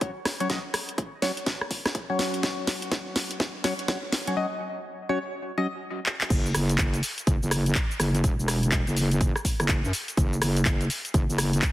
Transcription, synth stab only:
0.01 F#3 C#4 F#4 C#5
0.40 F#3 C#4 F#4 C#5
0.50 F#3 C#4 F#4 D#5
1.22 F#3 C#4 F#4 C#5
2.10 F#3 C#4 F#4 C#5
3.64 F#3 C#4 F#4 C#5
3.88 F#3 C#4 F#4 C#5
4.27 F#3 C#4 F#4 C#5
4.37 F#3 C#4 F#4 D#5
5.09 F#3 C#4 F#4 C#5
5.58 F#3 C#4 F#4 D#5

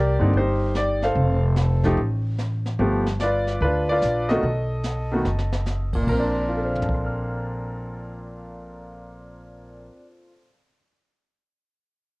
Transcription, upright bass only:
Already playing: C2
0.20 G2
0.33 G1
1.15 F1
1.97 A1
2.79 G1
3.61 D2
4.02 A#1
4.43 B1
5.25 F#1
6.07 A#1

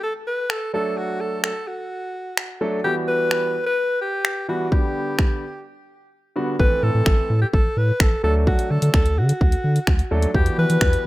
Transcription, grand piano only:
0.73 F#3 A3 D4 A4
2.61 F#3 A3 D4 A4
2.84 E3 G3 B3 F#4
4.48 E3 G3 B3 F#4
4.72 D3 G3 B3 G4
6.36 D3 G3 B3 F#4
6.59 E3 A3 C4 A4
8.23 F#3 A3 D4 A4
10.11 F#3 A3 D4 A4
10.34 E3 G3 B3 F#4

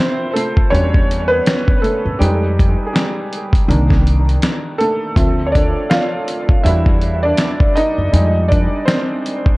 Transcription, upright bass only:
0.72 E2
2.05 F#2
2.21 F2
3.68 C2
5.17 D2
6.65 E2
7.98 F#2
8.13 F2

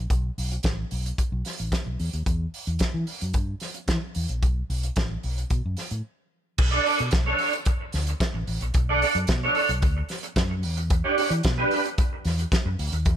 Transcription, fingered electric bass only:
0.10 B1
0.38 B1
0.64 A1
0.92 B1
1.32 B1
1.60 A1
1.86 B1
2.00 E2
2.14 D#2
2.26 E2
2.67 E2
2.94 E3
3.22 F#2
3.34 G2
3.88 E3
4.16 E2
4.29 A#1
4.43 B1
4.70 B1
4.97 A1
5.24 B1
5.51 B2
5.65 F#2
5.91 A2
6.59 B1
7.00 B2
7.13 B1
7.94 D2
8.34 A1
8.48 A1
8.61 A#1
8.75 B1
9.15 F#2
9.29 B2
9.69 B1
9.83 D2
10.36 F#2
10.64 E2
11.31 E3
11.45 B2
12.25 E2
12.66 F#2
12.79 D2
12.92 D#2
13.06 E2

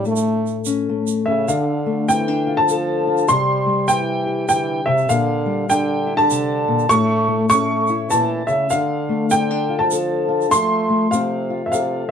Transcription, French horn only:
0.08 A3
1.26 C#3
1.49 D3
2.09 E3
2.57 F3
3.28 G3
3.89 E3
4.49 E3
4.85 C3
5.08 D3
5.69 D3
6.17 D3
6.89 A3
7.49 A3
8.09 E3
8.47 C#3
8.70 D3
9.30 D3
9.79 F3
10.50 A3
11.10 C3
11.66 C3
11.71 C3

